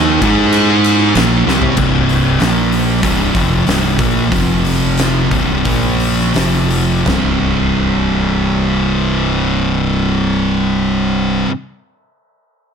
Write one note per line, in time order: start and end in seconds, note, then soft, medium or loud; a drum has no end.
0.00 0.18 D#2 loud
0.00 0.21 D#3 medium
0.00 0.22 A#3 loud
0.00 0.21 D#4 loud
0.22 1.11 G#2 medium
0.22 1.14 G#3 loud
0.22 1.14 D#4 loud
0.22 1.15 G#4 loud
0.22 kick loud
0.22 ride medium
0.53 ride loud
0.84 ride medium
1.15 1.44 A#1 loud
1.15 1.45 A#2 medium
1.15 1.46 F3 loud
1.15 1.46 A#3 loud
1.15 snare loud
1.15 ride loud
1.46 1.75 C2 loud
1.46 1.76 C3 medium
1.46 1.76 G3 loud
1.46 1.77 C4 loud
1.46 snare medium
1.62 floor tom medium
1.77 2.36 C1 medium
1.77 2.39 C2 medium
1.77 2.40 G2 loud
1.77 2.40 C3 loud
1.77 kick loud
1.77 crash medium
2.09 open hi-hat medium
2.40 3.00 A#1 loud
2.40 3.02 A#2 medium
2.40 3.02 F3 medium
2.40 3.03 A#3 medium
2.40 snare loud
2.40 open hi-hat medium
2.72 open hi-hat soft
3.02 3.32 C1 medium
3.02 3.33 C2 loud
3.02 3.34 G2 medium
3.02 3.34 C3 loud
3.02 kick loud
3.02 open hi-hat medium
3.35 3.64 F1 medium
3.35 3.66 F2 medium
3.35 3.66 C3 medium
3.35 3.66 F3 medium
3.35 kick loud
3.35 open hi-hat medium
3.67 3.97 C1 medium
3.67 3.98 C2 medium
3.67 3.99 G2 medium
3.67 3.99 C3 medium
3.67 snare loud
3.67 open hi-hat medium
3.99 4.29 A#1 medium
3.99 4.33 A#2 medium
3.99 4.32 F3 medium
3.99 4.34 A#3 loud
3.99 kick loud
3.99 open hi-hat medium
4.32 5.28 F1 medium
4.32 5.31 F2 medium
4.32 5.31 C3 medium
4.32 5.31 F3 loud
4.32 kick loud
4.32 open hi-hat medium
4.65 open hi-hat medium
4.97 snare loud
4.97 open hi-hat medium
5.31 5.63 C1 medium
5.31 5.64 C2 medium
5.31 5.65 G2 medium
5.31 5.65 C3 loud
5.31 kick loud
5.31 open hi-hat medium
5.65 6.31 A#1 medium
5.65 6.33 A#2 medium
5.65 6.34 F3 loud
5.65 6.35 A#3 medium
5.65 kick loud
5.65 open hi-hat medium
6.00 open hi-hat medium
6.19 snare soft
6.34 7.03 F1 medium
6.34 7.05 F2 medium
6.34 7.05 C3 medium
6.34 7.06 F3 medium
6.34 snare loud
6.34 open hi-hat medium
6.70 open hi-hat medium
7.06 11.44 C1 medium
7.06 11.47 C2 medium
7.06 11.48 G2 loud
7.06 11.49 C3 medium
7.06 snare medium
7.06 floor tom loud
7.06 crash medium